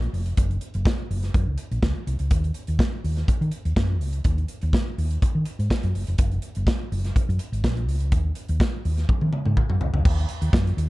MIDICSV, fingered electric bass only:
0, 0, Header, 1, 3, 480
1, 0, Start_track
1, 0, Tempo, 483871
1, 373, Time_signature, 4, 2, 24, 8
1, 10803, End_track
2, 0, Start_track
2, 0, Title_t, "Fingered electric bass"
2, 0, Program_c, 0, 33
2, 131, Note_on_c, 0, 29, 78
2, 314, Note_off_c, 0, 29, 0
2, 375, Note_on_c, 0, 30, 101
2, 556, Note_off_c, 0, 30, 0
2, 742, Note_on_c, 0, 30, 85
2, 827, Note_off_c, 0, 30, 0
2, 1095, Note_on_c, 0, 30, 69
2, 1276, Note_off_c, 0, 30, 0
2, 1337, Note_on_c, 0, 42, 93
2, 1432, Note_off_c, 0, 42, 0
2, 1461, Note_on_c, 0, 37, 67
2, 1546, Note_off_c, 0, 37, 0
2, 1700, Note_on_c, 0, 34, 85
2, 1786, Note_off_c, 0, 34, 0
2, 1813, Note_on_c, 0, 37, 83
2, 1910, Note_off_c, 0, 37, 0
2, 2053, Note_on_c, 0, 36, 79
2, 2150, Note_off_c, 0, 36, 0
2, 2180, Note_on_c, 0, 37, 69
2, 2266, Note_off_c, 0, 37, 0
2, 2294, Note_on_c, 0, 39, 99
2, 2476, Note_off_c, 0, 39, 0
2, 2660, Note_on_c, 0, 39, 83
2, 2746, Note_off_c, 0, 39, 0
2, 3018, Note_on_c, 0, 39, 70
2, 3199, Note_off_c, 0, 39, 0
2, 3383, Note_on_c, 0, 51, 85
2, 3468, Note_off_c, 0, 51, 0
2, 3623, Note_on_c, 0, 39, 72
2, 3708, Note_off_c, 0, 39, 0
2, 3736, Note_on_c, 0, 42, 83
2, 3979, Note_off_c, 0, 42, 0
2, 3979, Note_on_c, 0, 37, 81
2, 4160, Note_off_c, 0, 37, 0
2, 4216, Note_on_c, 0, 39, 104
2, 4398, Note_off_c, 0, 39, 0
2, 4590, Note_on_c, 0, 39, 94
2, 4673, Note_off_c, 0, 39, 0
2, 4941, Note_on_c, 0, 39, 77
2, 5121, Note_off_c, 0, 39, 0
2, 5306, Note_on_c, 0, 51, 76
2, 5391, Note_off_c, 0, 51, 0
2, 5545, Note_on_c, 0, 44, 78
2, 5630, Note_off_c, 0, 44, 0
2, 5790, Note_on_c, 0, 42, 88
2, 5873, Note_off_c, 0, 42, 0
2, 5907, Note_on_c, 0, 30, 81
2, 6000, Note_off_c, 0, 30, 0
2, 6033, Note_on_c, 0, 29, 88
2, 6115, Note_off_c, 0, 29, 0
2, 6142, Note_on_c, 0, 30, 108
2, 6322, Note_off_c, 0, 30, 0
2, 6513, Note_on_c, 0, 30, 82
2, 6595, Note_off_c, 0, 30, 0
2, 6863, Note_on_c, 0, 30, 80
2, 7043, Note_off_c, 0, 30, 0
2, 7230, Note_on_c, 0, 42, 83
2, 7313, Note_off_c, 0, 42, 0
2, 7462, Note_on_c, 0, 32, 79
2, 7548, Note_off_c, 0, 32, 0
2, 7578, Note_on_c, 0, 34, 88
2, 7820, Note_off_c, 0, 34, 0
2, 7820, Note_on_c, 0, 37, 91
2, 8058, Note_off_c, 0, 37, 0
2, 8058, Note_on_c, 0, 39, 100
2, 8239, Note_off_c, 0, 39, 0
2, 8424, Note_on_c, 0, 39, 85
2, 8509, Note_off_c, 0, 39, 0
2, 8781, Note_on_c, 0, 39, 84
2, 8960, Note_off_c, 0, 39, 0
2, 9143, Note_on_c, 0, 51, 92
2, 9227, Note_off_c, 0, 51, 0
2, 9386, Note_on_c, 0, 44, 98
2, 9470, Note_off_c, 0, 44, 0
2, 9620, Note_on_c, 0, 42, 90
2, 9706, Note_off_c, 0, 42, 0
2, 9732, Note_on_c, 0, 36, 95
2, 9828, Note_off_c, 0, 36, 0
2, 9857, Note_on_c, 0, 37, 77
2, 9943, Note_off_c, 0, 37, 0
2, 9976, Note_on_c, 0, 39, 114
2, 10156, Note_off_c, 0, 39, 0
2, 10333, Note_on_c, 0, 39, 95
2, 10420, Note_off_c, 0, 39, 0
2, 10449, Note_on_c, 0, 42, 83
2, 10630, Note_off_c, 0, 42, 0
2, 10685, Note_on_c, 0, 39, 87
2, 10803, Note_off_c, 0, 39, 0
2, 10803, End_track
3, 0, Start_track
3, 0, Title_t, "Muted fingered electric bass strokes"
3, 3260, Note_on_c, 9, 29, 44
3, 3359, Note_off_c, 9, 29, 0
3, 5184, Note_on_c, 9, 29, 45
3, 5283, Note_off_c, 9, 29, 0
3, 7104, Note_on_c, 9, 29, 46
3, 7203, Note_off_c, 9, 29, 0
3, 9020, Note_on_c, 9, 29, 42
3, 9119, Note_off_c, 9, 29, 0
3, 10803, End_track
0, 0, End_of_file